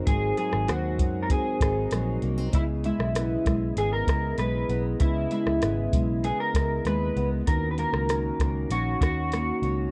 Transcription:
Already playing: steel-string acoustic guitar F#3 C4 D#4, tonewheel organ C4 D#4 F#4 A#4
0.07 picked electric bass G#1, steel-string acoustic guitar G#2, clean electric guitar G#4, kick, closed hi-hat
0.37 steel-string acoustic guitar F#3, clean electric guitar G#4, closed hi-hat
0.53 picked electric bass G#1, cross-stick
0.68 picked electric bass D#2, steel-string acoustic guitar C4, clean electric guitar F#4, cross-stick, closed hi-hat
0.99 picked electric bass F#2, steel-string acoustic guitar F#3, kick, closed hi-hat
1.23 clean electric guitar A#4
1.30 steel-string acoustic guitar C4, clean electric guitar G#4, kick, closed hi-hat
1.60 picked electric bass G#1, steel-string acoustic guitar D#4, kick, cross-stick, closed hi-hat
1.91 picked electric bass A#1, steel-string acoustic guitar F#3, cross-stick, closed hi-hat
2.22 picked electric bass C2, steel-string acoustic guitar A#3, closed hi-hat
2.38 steel-string acoustic guitar C4
2.51 picked electric bass C#2, steel-string acoustic guitar C#3, tonewheel organ B3 E4 D#5, clean electric guitar E4, kick, closed hi-hat
2.56 tonewheel organ G#4
2.84 steel-string acoustic guitar G#3, clean electric guitar E4, closed hi-hat
2.99 picked electric bass B1, cross-stick
3.15 steel-string acoustic guitar B3, cross-stick, closed hi-hat
3.45 picked electric bass B1, steel-string acoustic guitar G#3, kick, cross-stick, closed hi-hat
3.77 picked electric bass G#1, steel-string acoustic guitar B3, clean electric guitar G#4, closed hi-hat
3.93 clean electric guitar A#4
4.07 picked electric bass C#2, steel-string acoustic guitar E4, kick, cross-stick, closed hi-hat
4.38 picked electric bass B1, steel-string acoustic guitar G#3, clean electric guitar B4, cross-stick, closed hi-hat
4.69 picked electric bass B1, steel-string acoustic guitar B3, closed hi-hat
5.00 picked electric bass C#2, steel-string acoustic guitar C#3, clean electric guitar E4, kick, closed hi-hat
5.31 steel-string acoustic guitar G#3, clean electric guitar E4, closed hi-hat
5.46 picked electric bass C#2, cross-stick
5.62 picked electric bass G#1, steel-string acoustic guitar B3, cross-stick, closed hi-hat
5.92 picked electric bass B1, steel-string acoustic guitar G#3, kick, closed hi-hat
6.24 steel-string acoustic guitar B3, clean electric guitar G#4, closed hi-hat
6.40 clean electric guitar A#4
6.54 picked electric bass C#2, steel-string acoustic guitar E4, kick, cross-stick, closed hi-hat
6.85 picked electric bass D#2, steel-string acoustic guitar G#3, clean electric guitar B4, cross-stick, closed hi-hat
7.16 picked electric bass C#2, steel-string acoustic guitar B3, closed hi-hat
7.45 picked electric bass D#2, steel-string acoustic guitar D#3, tonewheel organ A#3 C#4 D#4, clean electric guitar A#4, kick, closed hi-hat
7.49 tonewheel organ F#4
7.71 clean electric guitar B4
7.78 steel-string acoustic guitar A#3, clean electric guitar A#4, closed hi-hat
7.93 picked electric bass C#2, cross-stick
8.09 steel-string acoustic guitar C#4, cross-stick, closed hi-hat
8.39 picked electric bass C#2, steel-string acoustic guitar A#3, kick, cross-stick, closed hi-hat
8.70 picked electric bass A#1, steel-string acoustic guitar C#4, clean electric guitar F#4, closed hi-hat
9.01 picked electric bass D#2, clean electric guitar F#4, steel-string acoustic guitar F#4, kick, cross-stick, closed hi-hat
9.32 steel-string acoustic guitar A#3, cross-stick, closed hi-hat
9.62 picked electric bass C#2, steel-string acoustic guitar C#4, closed hi-hat

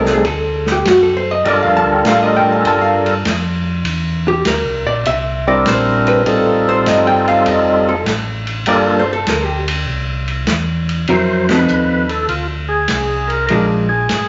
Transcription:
Already playing: tonewheel organ C2 G3 A3 C4 D#4 A4
0.05 snare
0.13 hollow-body jazz guitar G#4
0.25 tonewheel organ D2, hollow-body jazz guitar A4, ride
0.66 snare
0.72 hollow-body jazz guitar G4
0.85 tonewheel organ F#2, hollow-body jazz guitar F#4, snare, hi-hat pedal, ride
1.03 hollow-body jazz guitar A4
1.17 hollow-body jazz guitar C5
1.31 hollow-body jazz guitar D#5
1.44 tonewheel organ G2 G3 D4 F4 A4 A#4, ride
1.48 hollow-body jazz guitar D5
1.63 tonewheel organ F2, hollow-body jazz guitar F5
1.77 hollow-body jazz guitar A5
1.84 tonewheel organ D2
1.93 hollow-body jazz guitar G5
2.05 tonewheel organ A2, hollow-body jazz guitar F5, snare, hi-hat pedal, ride
2.23 hollow-body jazz guitar D#5
2.37 hollow-body jazz guitar G5
2.52 hollow-body jazz guitar G#5
2.65 tonewheel organ G2, hollow-body jazz guitar A5, ride
2.81 hollow-body jazz guitar F5
3.06 ride
3.25 tonewheel organ F2, snare, hi-hat pedal, ride
3.84 tonewheel organ E2, ride
4.28 hollow-body jazz guitar G4
4.45 tonewheel organ D2, hollow-body jazz guitar A#4, snare, hi-hat pedal, ride
4.65 tonewheel organ C2
4.85 tonewheel organ A#1, hollow-body jazz guitar D5
5.05 tonewheel organ C2, hollow-body jazz guitar E5, ride
5.47 tonewheel organ G3 C4 D4 E4 A#4, hollow-body jazz guitar D5
5.66 tonewheel organ A#1, hollow-body jazz guitar C5, snare, hi-hat pedal, ride
6.07 hollow-body jazz guitar B4, ride
6.26 tonewheel organ A1 G3 C4 D#4 F4 A4, hollow-body jazz guitar A4, ride
6.69 hollow-body jazz guitar C5
6.86 tonewheel organ G1, hollow-body jazz guitar D#5, snare, hi-hat pedal, ride
7.07 hollow-body jazz guitar G5
7.27 hollow-body jazz guitar F5, ride
7.46 tonewheel organ F1, hollow-body jazz guitar D#5, ride
7.89 hollow-body jazz guitar A4
8.06 tonewheel organ A1, snare, hi-hat pedal, ride
8.47 ride
8.66 tonewheel organ G1 G3 A#3 D4 F4 A4, hollow-body jazz guitar D5, ride
8.99 hollow-body jazz guitar C5
9.13 hollow-body jazz guitar A4
9.27 tonewheel organ D2, hollow-body jazz guitar A#4, snare, hi-hat pedal, ride
9.44 hollow-body jazz guitar G4
9.68 ride
9.87 tonewheel organ C2
10.28 ride
10.47 tonewheel organ E2, snare, hi-hat pedal, ride
10.89 ride
11.07 tonewheel organ F2 C5, hollow-body jazz guitar F#3 C#4 E4 A#4, ride
11.49 hollow-body jazz guitar F3 C4 D#4 A4, tonewheel organ B4, snare, ride
11.68 tonewheel organ D#2, hi-hat pedal
12.09 tonewheel organ A4, ride
12.29 tonewheel organ D2 F4, ride
12.69 tonewheel organ G#4
12.88 tonewheel organ C2, snare, hi-hat pedal, ride
13.28 tonewheel organ A#4, ride
13.47 tonewheel organ A#1 A#4, hollow-body jazz guitar F3 G#3, ride
13.52 hollow-body jazz guitar D4
13.89 tonewheel organ G#4
14.09 tonewheel organ G#1, snare, hi-hat pedal, ride

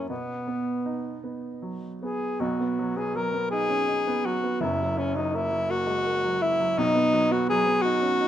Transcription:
Already playing: grand piano F#2 F#3 A#3 E4
0.09 grand piano B2, alto saxophone B3
0.47 grand piano B3
0.86 grand piano D#4
1.24 grand piano B3
1.62 grand piano F#3
2.02 grand piano B3, alto saxophone G#4
2.40 grand piano B1 B2, alto saxophone F#4
2.60 grand piano B3
2.79 grand piano F#3
2.96 grand piano B3, alto saxophone G#4
3.15 grand piano F#3, alto saxophone A#4
3.34 grand piano B3
3.51 grand piano D#4, alto saxophone G#4
3.70 grand piano C#4
3.88 grand piano D#4
4.07 grand piano B3
4.25 grand piano F#3, alto saxophone F#4
4.44 grand piano B3
4.61 grand piano F#1 F#2, alto saxophone E4
4.81 grand piano F#3
4.97 alto saxophone C#4, grand piano E4
5.16 grand piano F#3, alto saxophone D#4
5.34 grand piano A#3, alto saxophone E4
5.51 grand piano F#3
5.70 grand piano A#3, alto saxophone F#4
5.87 grand piano G#3
6.06 grand piano A#3
6.24 grand piano F#3
6.42 grand piano E4, alto saxophone E4
6.60 grand piano F#3
6.77 grand piano B1 B2, alto saxophone D#4
6.95 grand piano B3
7.13 grand piano F#3
7.31 grand piano B3, alto saxophone F#4
7.49 grand piano F#3, alto saxophone G#4
7.66 grand piano B3
7.82 grand piano D#4, alto saxophone F#4
8.02 grand piano C#4
8.21 grand piano D#4

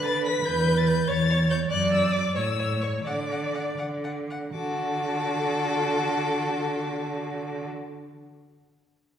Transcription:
Already playing: cello D3, viola B4
0.05 violin B4 A6
0.25 violin B4 B6
0.46 cello E2, violin B4 G6
0.67 violin B4
0.78 violin A6
0.87 violin B4 G6
1.08 cello E2, viola C#5, violin C#5 A6
1.30 violin C#5
1.50 violin C#5 G6
1.70 cello F#2, violin D5 F#6, viola D5
1.91 violin D5 E6
2.13 violin D5 D6
2.35 cello A2, violin C#5 E6, viola C#5
2.59 violin C#5
2.81 violin C#5 C#6
3.04 cello D3, viola D5, violin F#5 D6
3.31 violin F#5
3.55 violin F#5
3.78 cello D3, violin F#5
4.04 violin F#5
4.30 violin F#5
4.53 cello D3, viola F#4, violin A4 D6

